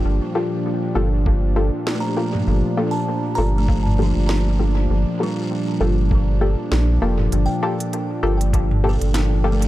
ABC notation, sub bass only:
X:1
M:4/4
L:1/16
Q:"Swing 16ths" 1/4=99
K:Gm
V:1 name="Sub bass" clef=bass
G,,, z4 z G,,,4- G,,, z4 z | G,,, z4 z G,,,4- G,,, G,,,4- G,,, | G,,, z4 z G,,,4- G,,, z B,,,2 F,,,2 | G,,, z4 z G,,,4- G,,, G,,,4- G,,, |]